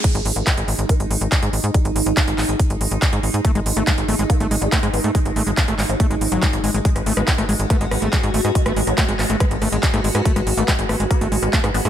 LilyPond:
<<
  \new Staff \with { instrumentName = "Ambient pad" } { \time 4/4 \key gis \phrygian \tempo 4 = 141 <gis dis'>1~ | <gis dis'>1~ | <gis dis'>1~ | <gis dis'>1 |
fis'1~ | fis'1~ | fis'1 | }
  \new Staff \with { instrumentName = "Acid bass" } { \clef bass \time 4/4 \key gis \phrygian r1 | r1 | a16 gis16 r16 a16 gis16 r16 a16 gis16 r16 a16 gis16 r16 a16 gis16 r16 a16 | gis16 r16 a16 gis16 r16 a16 gis16 r16 a16 gis16 r16 fis16 gis16 r16 gis16 gis16 |
gis16 r16 a16 gis16 r16 a16 gis16 r16 a16 gis16 r16 a16 gis16 r16 a16 gis16 | r16 a16 gis16 r16 a16 gis16 r16 a16 gis16 r16 a16 gis16 r16 a16 gis16 r16 | a16 gis16 r16 a16 gis16 r16 a16 gis16 r16 a16 gis16 r16 a16 gis16 r16 a16 | }
  \new Staff \with { instrumentName = "Synth arpeggio sound" } { \clef bass \time 4/4 \key gis \phrygian r8. b4~ b16 b16 r4. r16 | gis16 r8 fis16 fis16 r2 r8. | r8. b4~ b16 b16 r8 gis8. b16 r16 | r4. r16 fis8. r16 fis16 fis16 r8. |
r8. b4~ b16 b16 r4. r16 | gis16 r8 fis16 fis16 r2 r8. | r8. b4~ b16 b16 r8 gis8. b16 r16 | }
  \new Staff \with { instrumentName = "Analog synth bass" } { \clef bass \time 4/4 \key gis \phrygian r16 gis,,16 gis,,16 gis,,16 r16 gis,,16 gis,,16 gis,,16 r16 gis,,16 gis,,16 gis,,16 r16 gis,16 gis,,16 gis,16 | r16 gis,,16 gis,,16 gis,,16 r16 gis,,16 gis,,16 gis,,16 r16 gis,,16 gis,,16 gis,,16 r16 gis,16 gis,,16 gis,16 | r16 gis,,16 gis,,16 gis,,16 r16 gis,,16 gis,,16 gis,,16 r16 gis,,16 gis,,16 gis,,16 r16 gis,16 gis,,16 gis,16 | r16 gis,,16 gis,,16 gis,,16 r16 gis,,16 gis,,16 gis,,16 r16 gis,,16 gis,,16 gis,,16 r16 gis,,16 gis,,16 gis,,16 |
r16 gis,,16 gis,,16 gis,,16 r16 gis,,16 gis,,16 gis,,16 r16 gis,,16 gis,,16 gis,,16 r16 gis,16 gis,,16 gis,16 | r16 gis,,16 gis,,16 gis,,16 r16 gis,,16 gis,,16 gis,,16 r16 gis,,16 gis,,16 gis,,16 r16 gis,16 gis,,16 gis,16 | r16 gis,,16 gis,,16 gis,,16 r16 gis,,16 gis,,16 gis,,16 r16 gis,,16 gis,,16 gis,,16 r16 gis,16 gis,,16 gis,16 | }
  \new DrumStaff \with { instrumentName = "Drums" } \drummode { \time 4/4 <cymc hh bd>16 hh16 hho16 hh16 <hc hh bd>16 hh16 hho16 hh16 <hh bd>16 hh16 hho16 hh16 <hc hh bd>16 hh16 hho16 hh16 | <hh bd>16 hh16 hho16 hh16 <hc hh bd>16 hh16 <hc hho>16 hh16 <hh bd>16 hh16 hho16 hh16 <hc hh bd>16 hh16 hho16 hh16 | <hh bd>16 hh16 hho16 hh16 <hc hh bd>16 hh16 hho16 hh16 <hh bd>16 hh16 hho16 hh16 <hc hh bd>16 hh16 hho16 hh16 | <hh bd>16 hh16 hho16 hh16 <hc hh bd>16 hh16 <hc hho>16 hh16 <hh bd>16 hh16 hho16 hh16 <hc hh bd>16 hh16 hho16 hh16 |
<hh bd>16 <hh ss>16 hho16 <hh ss>16 <hc hh bd>16 <hh ss>16 hho16 hh16 <hh bd ss>16 hh16 <hho ss>16 hh16 <hc hh bd ss>16 hh16 hho16 <hh ss>16 | <hh bd>16 <hh ss>16 hho16 <hh ss>16 <hc hh bd>16 hh16 <hc hho ss>16 hh16 <hh bd ss>16 hh16 <hho ss>16 hh16 <hc hh bd>16 <hh ss>16 hho16 <hh ss>16 | <hh bd>16 <hh ss>16 hho16 hh16 <hc hh bd ss>16 hh16 <hho ss>16 hh16 <hh bd ss>16 hh16 hho16 <hh ss>16 <hc hh bd>16 <hh ss>16 hho16 <hh ss>16 | }
>>